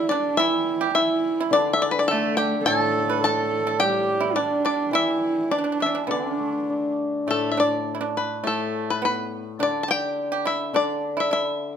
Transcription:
Already playing: hammered dulcimer G3, horsehead fiddle E4
0.09 horsehead fiddle D4, pipa D4, five-string banjo D5
0.37 hammered dulcimer E3, horsehead fiddle E4, pipa E4, five-string banjo E5
0.81 pipa G4
0.94 horsehead fiddle E4, pipa E4, five-string banjo E5
1.40 pipa E4
1.50 hammered dulcimer D3, horsehead fiddle D4, pipa D4, five-string banjo D5
1.73 five-string banjo E5
1.82 five-string banjo D5
1.91 five-string banjo B4
1.99 five-string banjo D5
2.08 horsehead fiddle A3, pipa A3, five-string banjo A4
2.37 pipa G4, five-string banjo G5
2.65 hammered dulcimer A2, horsehead fiddle A4, pipa A4, five-string banjo A5
3.09 pipa B4
3.22 horsehead fiddle A4, pipa A4, five-string banjo A5
3.67 pipa A4
3.79 hammered dulcimer G3, pipa G4, horsehead fiddle G4, five-string banjo G5
4.20 pipa E4
4.36 horsehead fiddle D4, pipa D4, five-string banjo D5
4.65 pipa D4, five-string banjo D5
4.91 hammered dulcimer E3, pipa E4, horsehead fiddle E4, five-string banjo E5
5.51 horsehead fiddle D4, pipa D4, five-string banjo D5
5.58 pipa D4
5.64 pipa D4
5.72 pipa D4
5.80 pipa D4, five-string banjo E5
5.86 pipa D4
5.95 pipa D4
6.07 hammered dulcimer D3, pipa B3, horsehead fiddle D4, five-string banjo D5
6.34 pipa D4
6.39 hammered dulcimer A3
6.70 hammered dulcimer D4
7.27 hammered dulcimer A2, pipa A3, five-string banjo A4
7.51 five-string banjo E5
7.57 pipa D4, five-string banjo D5
7.95 pipa E4
8.01 pipa D4
8.17 five-string banjo B4
8.43 hammered dulcimer A2, pipa A3, five-string banjo A4
8.90 five-string banjo B4
9.02 pipa B3, five-string banjo B4
9.59 hammered dulcimer D3, pipa D4, five-string banjo D5
9.83 five-string banjo A5
9.88 pipa G4, five-string banjo G5
10.32 pipa G4
10.45 pipa E4, five-string banjo E5
10.73 hammered dulcimer D3, pipa D4, five-string banjo D5
11.17 pipa E4, five-string banjo E5
11.31 pipa E4, five-string banjo E5

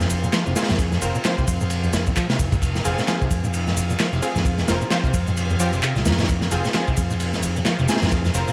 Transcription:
Already playing: fingered electric bass F2, tonewheel organ F3 F4 G#4 C5
0.00 acid bass F2, snare, shaker
0.10 acid bass F1, ride, shaker
0.23 acid bass A#2, shaker
0.32 acid bass F3, snare, clap, ride, shaker
0.46 fingered electric bass F1, acid bass C3, shaker
0.56 synth stab C4 F4 G#4, snare, ride, shaker
0.62 snare, ride
0.69 fingered electric bass F2, acid bass G#2, snare, ride, shaker
0.73 snare, ride
0.78 kick, ride, shaker
0.92 acid bass F2, snare, shaker
1.02 acid bass F1, fingered electric bass F1, synth stab C4 F4 A#4, ride, shaker
1.15 acid bass A#2, shaker
1.25 acid bass F3, synth stab C4 F4 C5, snare, clap, ride, shaker
1.38 acid bass C3, kick, shaker
1.47 fingered electric bass F2, kick, ride, shaker
1.61 acid bass G#2, shaker
1.70 ride, shaker
1.84 acid bass F2, shaker
1.93 acid bass F1, snare, ride, shaker
2.06 acid bass A#2, kick, shaker
2.15 acid bass F3, kick, clap, ride, shaker
2.29 acid bass C3, snare, ride, shaker
2.39 fingered electric bass F1, kick, ride, shaker
2.52 acid bass G#2, kick, ride, shaker
2.62 tonewheel organ F5, kick, ride, shaker
2.75 acid bass F2, snare, shaker
2.85 acid bass F1, fingered electric bass F1, synth stab C4 F4 G#4, ride, shaker
2.98 acid bass A#2, snare, shaker
3.08 acid bass F3, synth stab C4 F4 G#4, snare, clap, ride, shaker
3.21 acid bass C3, kick, shaker
3.31 fingered electric bass F2, kick, ride, shaker
3.44 acid bass G#2, shaker
3.54 ride, shaker
3.67 acid bass F2, snare, shaker
3.77 acid bass F1, ride, shaker
3.90 acid bass A#2, shaker
3.99 acid bass F3, snare, clap, ride, shaker
4.13 fingered electric bass F1, acid bass C3, shaker
4.22 synth stab C4 F4 G#4, ride, shaker
4.36 fingered electric bass F2, acid bass G#2, snare, shaker
4.45 kick, ride, shaker
4.58 acid bass F2, snare, shaker
4.68 acid bass F1, fingered electric bass F1, synth stab C4 F4 A#4, snare, ride, shaker
4.81 acid bass A#2, shaker
4.91 acid bass F3, synth stab C4 F4 C5, snare, clap, ride, shaker
5.04 acid bass C3, kick, shaker
5.14 fingered electric bass F2, kick, ride, shaker
5.27 acid bass G#2, shaker
5.37 ride, shaker
5.50 acid bass F2, shaker
5.59 acid bass F3, synth stab C4 F4 G4, ride, shaker
5.73 fingered electric bass F1, acid bass C3, shaker
5.83 acid bass C3, clap, ride, shaker
5.96 fingered electric bass C2, acid bass A#2, snare, shaker
6.05 acid bass D#2, fingered electric bass F2, snare, ride, shaker
6.11 snare, ride
6.18 acid bass G#2, snare, ride, shaker
6.23 snare, ride
6.29 tonewheel organ C5, kick, ride, shaker
6.41 acid bass F2, snare, shaker
6.51 acid bass F1, fingered electric bass F1, synth stab C4 F4 G#4, ride, shaker
6.65 acid bass A#2, snare, shaker
6.73 acid bass F3, synth stab C4 F4 G#4, snare, clap, ride, shaker
6.87 acid bass C3, kick, shaker
6.97 fingered electric bass F2, kick, ride, shaker
7.10 acid bass G#2, shaker
7.20 ride, shaker
7.33 acid bass F2, snare, shaker
7.43 acid bass F1, ride, shaker
7.56 acid bass A#2, shaker
7.65 acid bass F3, snare, clap, ride, shaker
7.79 fingered electric bass F1, acid bass C3, shaker
7.88 synth stab C4 F4 G#4, snare, ride, shaker
7.95 snare, ride
8.02 fingered electric bass F2, acid bass G#2, snare, ride, shaker
8.07 snare, ride
8.11 kick, ride, shaker
8.25 acid bass F2, snare, shaker
8.34 acid bass F1, fingered electric bass F1, synth stab C4 F4 A#4, ride, shaker
8.48 acid bass A#2, shaker

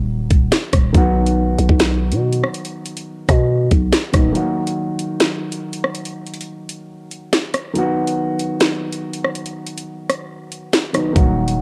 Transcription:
Already playing: 808-style bass D#1, grand piano D#3 F#3 A#3 F#4
0.31 808-style bass D#1, kick, closed hi-hat
0.52 snare, closed hi-hat
0.73 808-style bass D#1, kick, cross-stick, closed hi-hat
0.93 808-style bass B1, grand piano D#3 F#3 B3, kick, closed hi-hat
0.97 grand piano F#4
1.27 closed hi-hat
1.58 808-style bass B1, closed hi-hat
1.69 808-style bass B1, kick
1.80 snare, closed hi-hat
2.12 808-style bass B2, closed hi-hat
2.33 closed hi-hat
2.44 cross-stick
2.54 closed hi-hat
2.65 closed hi-hat
2.86 closed hi-hat
2.97 closed hi-hat
3.29 808-style bass B2, kick, cross-stick, closed hi-hat
3.71 808-style bass B1, kick, closed hi-hat
3.92 snare, closed hi-hat
4.12 808-style bass D#1, grand piano D#3 F#3 B3 D#4, kick, cross-stick, closed hi-hat
4.32 grand piano D#3 F#3 A#3, closed hi-hat
4.37 grand piano F#4
4.67 closed hi-hat
4.99 closed hi-hat
5.20 snare, closed hi-hat
5.52 closed hi-hat
5.73 closed hi-hat
5.84 cross-stick
5.95 closed hi-hat
6.05 closed hi-hat
6.27 closed hi-hat
6.34 closed hi-hat
6.41 closed hi-hat
6.69 closed hi-hat
7.11 closed hi-hat
7.33 snare, closed hi-hat
7.54 cross-stick, closed hi-hat
7.73 grand piano D#3 F#3 B3, closed hi-hat
7.78 grand piano F#4
8.07 closed hi-hat
8.39 closed hi-hat
8.60 snare, closed hi-hat
8.92 closed hi-hat
9.13 closed hi-hat
9.24 cross-stick
9.35 closed hi-hat
9.46 closed hi-hat
9.66 closed hi-hat
9.78 closed hi-hat
10.10 cross-stick, closed hi-hat
10.52 closed hi-hat
10.73 snare, closed hi-hat
10.93 grand piano D#3 F#3 B3 D#4, cross-stick, closed hi-hat
11.13 808-style bass D#1, grand piano D#3 F#3 A#3, kick, closed hi-hat
11.18 grand piano F#4
11.48 closed hi-hat
11.58 808-style bass D#2

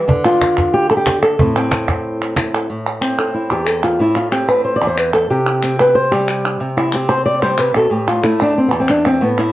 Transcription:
0.08 nylon-string guitar D3, cajon bass
0.25 nylon-string guitar F4
0.41 cajon slap, clap
0.58 cajon bass, cajon slap
0.74 nylon-string guitar G4
0.91 nylon-string guitar A4
0.97 nylon-string guitar G4
1.06 cajon slap, clap
1.22 nylon-string guitar A4
1.39 nylon-string guitar A2 C4 E4, cajon bass
1.56 nylon-string guitar C4
1.71 cajon slap, clap
1.88 cajon bass, cajon slap
2.04 cajon slap
2.20 cajon slap
2.36 nylon-string guitar E4, cajon slap, clap
2.54 nylon-string guitar A4
2.70 nylon-string guitar A2
3.01 nylon-string guitar C4, clap
3.18 nylon-string guitar A4
3.34 nylon-string guitar E4
3.50 nylon-string guitar E2 G4
3.67 nylon-string guitar A4, clap
3.84 nylon-string guitar F4
3.99 nylon-string guitar A2 E4
4.16 nylon-string guitar F4
4.31 nylon-string guitar C4 G4, clap
4.48 nylon-string guitar B4, clap
4.64 nylon-string guitar C5
4.76 nylon-string guitar D5
4.81 nylon-string guitar E2
4.87 nylon-string guitar C5
4.98 nylon-string guitar B4, clap
5.14 nylon-string guitar A4
5.30 nylon-string guitar C3 G4
5.63 nylon-string guitar C4, clap
5.80 nylon-string guitar B4
5.95 nylon-string guitar C5
6.12 nylon-string guitar G3 G4
6.28 clap
6.60 nylon-string guitar C3
6.77 nylon-string guitar E4
6.93 nylon-string guitar C4 G4, clap
7.09 nylon-string guitar C5, clap
7.26 nylon-string guitar D5
7.42 nylon-string guitar G3 C5
7.58 nylon-string guitar C3 B4, clap
7.75 nylon-string guitar B2 A4, clap
7.90 nylon-string guitar A2 A3 G4
8.08 nylon-string guitar F4
8.24 nylon-string guitar A3 E4, clap
8.40 nylon-string guitar D4, clap
8.58 nylon-string guitar C4
8.68 nylon-string guitar E2 B3
8.80 nylon-string guitar C4
8.88 nylon-string guitar D4, clap
9.06 nylon-string guitar C4
9.21 nylon-string guitar A2 B3
9.39 nylon-string guitar E4

